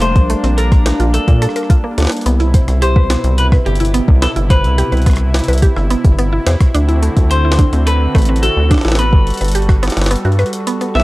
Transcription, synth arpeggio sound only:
0.02 A3
0.30 A3
0.44 C4
0.58 A4
0.86 A3
1.00 F4
1.14 A3
1.42 A4
1.56 A#4
1.70 F4
1.84 A#3
1.98 A3
2.26 B3
2.40 E4
2.54 C5
2.82 G4
2.96 B4
3.10 B3
3.52 B4
3.66 G4
3.80 E4
3.94 B3
4.22 B3
4.36 E4
4.50 C5
4.78 G4
4.92 B4
5.06 B3
5.48 B4
5.62 G4
5.76 E4
5.90 B3
6.18 B3
6.33 E4
6.46 C5
6.74 D4
6.89 E4
7.03 A3
7.45 E4
7.59 D4
7.73 C4
7.87 A3
8.15 A3
8.29 C4
8.43 F#4
8.71 D4
8.85 E4
8.99 B3
9.41 B4
9.55 G4
9.69 F#4
9.83 B3
10.11 B3
10.25 F#4
10.39 B4
10.67 B3
10.81 B3
10.95 B3

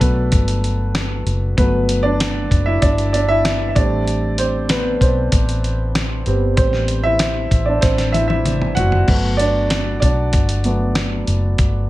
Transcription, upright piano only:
Already playing: A3 B3 D4 A4
0.00 F#3 A3 B3 B4
1.57 F#3 A3 B3 B4
2.03 D4 D5
2.66 E4 E5
2.82 D4 D5
3.13 D4 D5
3.29 E4 E5
3.69 E5
3.75 G3 A3 C4 D4 D5
4.39 C4 C5
4.69 B3 B4
5.01 C4 C5
6.26 G3 B3 C4
6.57 C4 C5
7.03 E4 E5
7.66 D4 D5
7.81 C4 C5
8.12 E4 E5
8.28 E4 E5
8.75 F#4 F#5
9.08 F#3 A3 B3
9.37 D4 D5
10.00 D4 D5
10.65 F#3 A3 B3

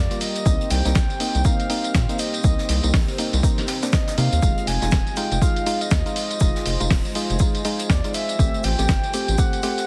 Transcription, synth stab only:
0.11 G3 A#3 F4
0.46 A#3 C4 D#4
0.85 A#3 C4 D#4
1.20 A#3 C4 D#4
1.45 A#3 C4 D#4
1.70 A#3 C4 D#4
2.09 A#3 C4 D#4
2.44 A#3 C4 D#4
2.84 A#3 C4 D#4
3.18 A#3 C4 D#4
3.43 A#3 C4 D#4
3.83 A#3 C4 D4
4.18 A#3 C4 D#4
4.42 G#3 D#4 F4
4.82 G#3 D#4 F4
5.17 G#3 D#4 F4
5.42 G#3 D#4 F4
5.66 G#3 D#4 F4
6.06 G#3 D#4 F4
6.41 G#3 D#4 F4
6.80 G#3 D#4 F4
7.15 G#3 D#4 F4
7.40 G#3 D#4 F4
7.65 G#3 D#4 F4
8.04 G#3 D#4 F4
8.39 A3 C4 G4
8.79 A3 C4 G4
9.13 A3 C4 G4
9.38 A3 C4 G4
9.63 A3 C4 G4

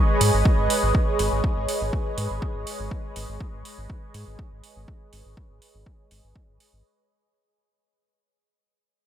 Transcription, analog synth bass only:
0.21 G#2
0.34 G#1
0.58 G#1
0.83 G#1
1.19 G#1
1.32 G#1
1.57 G#1
1.81 G#1
2.18 G#2
2.30 G#1
2.55 G#1
2.80 G#1
3.16 G#1
3.29 G#1
3.53 G#1
3.78 G#1
4.14 G#2
4.27 G#1
4.52 G#1
4.76 G#1
5.13 G#1
5.25 G#1
5.50 G#1
5.75 G#1
6.11 G#1
6.24 G#1
6.48 G#1
6.73 G#1

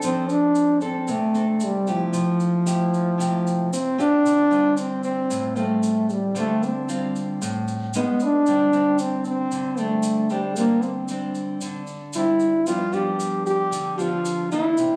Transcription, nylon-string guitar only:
Already playing: C4 D4 A4
0.04 F3
0.81 C4 D4 A4
1.08 C3
1.34 C4 D4 A4
1.87 A3 E4 G4
2.13 F3
2.66 A3 E4 G4
3.18 C3 A3 E4 G4
3.98 C4 F4 G4
4.25 D3
4.51 G3 C4 F4
5.30 A2
5.56 G3 C4 F4
6.35 D3 G3 C4 F4
6.88 G3 C4 F4
7.42 A2
7.95 G#3 C#4 D#4
8.48 D3 G3 C4 D4
8.73 G3 C4 D4
9.52 D3
9.78 G3 C4 D4
10.30 G3 C4 D4
10.57 D3 G3 C4 D4
11.10 G3 C4 D4
11.62 D3
12.15 G3 C4 D4
12.67 G2 F3 B3 D4
12.92 F3 B3 D4
13.71 D3
13.98 F3 B3 D4
14.52 E3 A#3 D4
14.78 C3

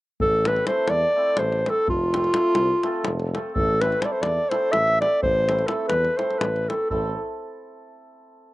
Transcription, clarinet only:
0.21 A4
0.47 B4
0.68 C5
0.90 D5
1.39 C5
1.70 A4
1.90 F4
3.53 A4
3.81 B4
4.02 C5 D5
4.12 C5
4.22 D5
4.50 C5
4.72 E5
5.01 D5
5.23 C5
5.67 A4
5.88 B4
6.17 C5
6.39 B4
6.69 A4
6.90 A4

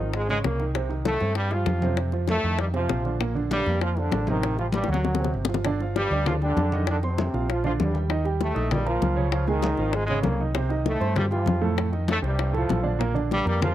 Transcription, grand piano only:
0.00 F3 F4
0.29 C#3 C#4
0.59 D#3 D#4
0.75 C3 C4
0.89 D#3 D#4
1.21 C4 C5
1.52 G3 G4
1.82 C3 C4
2.13 F3 F4
2.44 D#3 D#4
2.74 C3 C4
3.05 D3 D4
3.20 A#2 A#3
3.35 D3 D4
3.67 A#3 A#4
3.98 F3 F4
4.28 C3 C4
4.59 G3 G4
4.88 F#3 F#4
5.20 C3 C4
5.49 F3 F4
5.65 D3 D4 D5
5.81 F3 F4 F5
6.12 D4 D5 D6
6.41 G3 G4 G5
6.73 D#3 D#4 D#5
7.03 C4 C5 C6
7.34 F3 F4 F5
7.64 D3 D4 D5
7.94 G3 G4 G5
8.09 D#3 D#4 D#5
8.25 G3 G4 G5
8.55 D#4 D#5 D#6
8.85 A#3 A#4 A#5
9.16 C#3 C#4 C#5
9.48 G#3 G#4 G#5
9.79 F3 F4 F5
10.09 C#3 C#4 C#5
10.40 D#3 D#4 D#5
10.55 C3 C4 C5
10.69 D#3 D#4 D#5
11.00 C4 C5 C6
11.31 G3 G4 G5
11.61 A2 A3 A4
11.92 D#3 D#4 D#5
12.22 C3 C4 C5
12.53 A2 A3 A4
12.83 D3 D4 D5
12.99 A#2 A#3 A#4
13.14 D3 D4 D5
13.45 A#3 A#4 A#5

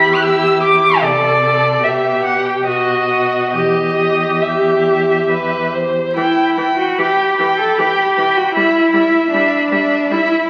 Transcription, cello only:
Already playing: E2
1.02 C3
1.82 B2
2.65 B2
3.53 E2
6.15 E4
6.78 F#4
6.98 G4
7.59 A4
7.78 G4
8.36 F#4
8.55 E4
9.32 D4
10.12 E4

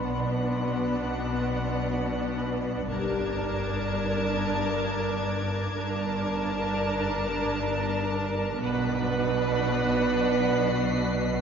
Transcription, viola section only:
0.05 B3 D4
2.91 D4 A#4
5.77 D4 A#4
8.62 D4 B4

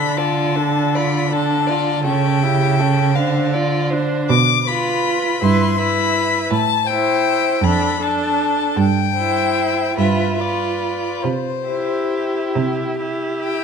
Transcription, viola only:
Already playing: D4
0.17 F4
0.56 D4
0.96 F4
1.33 D4
1.70 F4
2.06 C#4
2.43 E4
2.80 C#4
3.17 D4
3.54 F4
3.92 D4
4.68 F4
5.43 E4
5.79 E4
6.90 E4
7.64 D4
8.01 D4
9.18 E4
9.98 F4
10.39 F4
11.69 E4
13.00 E4

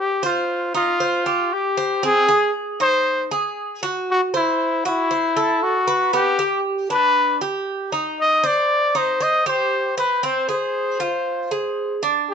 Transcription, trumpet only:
0.00 G4
0.25 F4
0.76 F4
1.53 G4
2.05 G#4
2.81 C5
4.11 F#4
4.36 E4
4.86 E4
5.63 F#4
6.14 G4
6.91 B4
8.20 D#5
8.46 D5
8.97 C5
9.22 D#5
9.48 C5
9.98 B4
10.25 C5
10.50 C5
12.30 G4

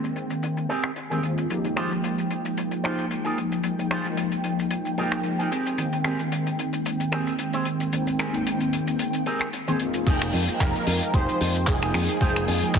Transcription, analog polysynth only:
Already playing: D#3 G#3 A#3 C4 G5
1.10 D#3 G#3 A#3 C4 G#4
1.22 D#3 G#3 A#3 C4 F4
1.49 F3 G#3 A#3 D#4 G4
1.90 F3 G#3 A#3 D#4 G5
3.63 F3 G#3 A#3 D#4 G5
4.04 F3 G#3 A#3 D#4 G5
4.97 F3 G#3 A#3 D#4 G5
5.77 D#3 G#3 A#3 C4 G5
6.18 D#3 G#3 A#3 C4 G5
7.92 D#3 G#3 A#3 C4 G5
8.32 D#3 G#3 A#3 C4 G5
9.68 D#3 G#3 A#3 C4 G#4
9.79 D#3 G#3 A#3 C4 F4
10.06 F3 G#3 A#3 D#4 G5
10.47 F3 G#3 A#3 D#4 G5
12.21 F3 G#3 A#3 D#4 G5
12.62 F3 G#3 A#3 D#4 G5

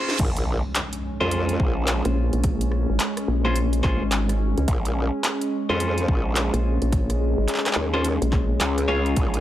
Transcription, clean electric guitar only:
Already playing: C#4 F4 G#4 C5
1.21 C#4 F4 G#4 C5
3.45 C#4 F4 G#4 C5
3.83 C#4 F4 G#4 C5
5.69 C#4 F4 G#4 C5
7.94 C#4 F4 G#4 C5
8.88 C#4 F4 G#4 C#5

